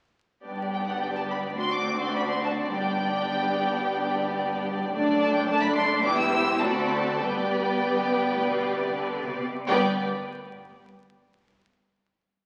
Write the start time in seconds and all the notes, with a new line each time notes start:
0.45 G1 G2 B3 D4 G4 D5
0.74 G5
0.88 F#5
1.02 G5
1.16 A5
1.31 B5
1.57 D2 C4 F#4 C6
1.72 D6
2.01 C6
2.14 B5
2.29 C6
2.43 A5
2.70 G1 G2 B3 G4 G5
4.93 F#1 F#2 A3 D4 D5
5.21 A5
5.34 G5
5.48 A3 D4 D5 A5
5.63 B5
5.77 C6
6.04 E1 E2 B3 E4 G4 B4 D6
6.19 E6
6.34 C5
6.62 D2 C4 F#4 A4 D5 A5
6.71 B5
6.79 A5
6.88 B5
6.96 A5
7.22 G1 G2 B3 G4 B4 D5 G5
7.84 G2
8.00 F#2
8.15 G2
8.31 A2
8.46 B2
8.76 C3
8.92 D3
9.24 C3
9.38 B2
9.54 C3
9.68 G1 G2 B3 G4 B4 D5 G5